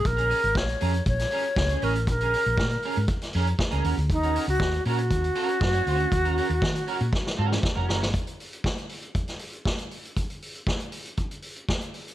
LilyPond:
<<
  \new Staff \with { instrumentName = "Alto flute" } { \time 4/4 \key dis \minor \tempo 4 = 119 ais'4 cis''4 cis''4. ais'8 | ais'2 r2 | dis'8. fis'8. fis'2~ fis'8~ | fis'2. r4 |
r1 | r1 | }
  \new Staff \with { instrumentName = "Clean electric guitar" } { \time 4/4 \key dis \minor r16 <cis' gis' ais'>16 <cis' gis' ais'>16 r8. <cis' gis' ais'>16 r8. <cis' gis' ais'>16 r8 <cis' gis' cis''>16 <cis' gis' cis''>16 r16 | r16 <cis' gis' ais'>16 <cis' gis' ais'>16 r8. <cis' gis' ais'>16 r8. <cis' gis' ais'>16 r8 <cis' gis' ais'>16 <cis' fis' ais'>16 r16 | r16 <cis' fis' ais'>16 <cis' fis' ais'>16 r8. <cis' fis' ais'>16 r8. <cis' fis' ais'>8 r16 <cis' fis' cis''>16 <cis' fis' cis''>8 | r16 <cis' fis' ais'>16 <cis' fis' ais'>16 r8. <cis' fis' ais'>16 r8. <cis' fis' ais'>8 r16 <cis' fis' ais'>16 <cis' fis' ais'>16 r16 |
r1 | r1 | }
  \new Staff \with { instrumentName = "Fingered electric bass" } { \clef bass \time 4/4 \key dis \minor ais,,8. gis,,16 ais,,8 eis,8 ais,,8 r8 cis,8 a,,8 | ais,,8. ais,,16 ais,8 r16 gis,16 r8 eis,8 r16 cis,16 dis,16 d,16 | dis,8. cis,16 dis,8 ais,8 dis,8 r8 fis,8 d,8 | dis,8. dis,16 dis8 r16 ais,16 r8 gis,8 r16 eis,,16 fis,,16 g,,16 |
r1 | r1 | }
  \new DrumStaff \with { instrumentName = "Drums" } \drummode { \time 4/4 <hh bd>16 hh16 hho16 hh16 <bd sn>16 hh16 hho16 hh16 <hh bd>16 <hh sn>16 hho16 hh16 <bd sn>16 hh16 hho16 hh16 | <hh bd>16 hh16 hho16 hh16 <bd sn>16 hh16 hho16 hh16 <hh bd>16 <hh sn>16 hho16 hh16 <bd sn>16 hh16 hho16 hh16 | <hh bd>16 hh16 hho16 hh16 <bd sn>16 hh16 hho16 hh16 <hh bd>16 hh16 hho16 hh16 <bd sn>16 hh16 hho16 hh16 | <hh bd>16 hh16 hho16 hh16 <bd sn>16 hh16 hho16 hh16 <bd sn>16 sn8 sn16 <bd sn>8 sn16 sn16 |
<hh bd>16 hh16 hho16 hh16 <bd sn>16 hh16 hho16 hh16 <hh bd>16 <hh sn>16 hho16 hh16 <bd sn>16 hh16 hho16 hh16 | <hh bd>16 hh16 hho16 hh16 <bd sn>16 hh16 hho16 hh16 <hh bd>16 hh16 hho16 hh16 <bd sn>16 hh16 hho16 hh16 | }
>>